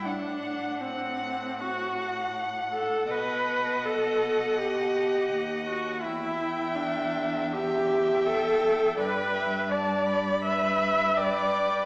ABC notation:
X:1
M:4/4
L:1/8
Q:1/4=82
K:Em
V:1 name="Violin"
f2 f2 f4 | f8 | g4 g4 | [K:G] g2 a b3 g2 |]
V:2 name="Violin"
f2 f2 f4 | ^d8 | e4 e4 | [K:G] d e d2 B2 B2 |]
V:3 name="Viola"
D2 C2 F2 z A | B2 A2 G3 F | E2 D2 G2 A2 | [K:G] B2 d2 e2 d2 |]
V:4 name="Cello" clef=bass
A,,8 | B,,6 ^D,,2 | E,,8 | [K:G] G,,8 |]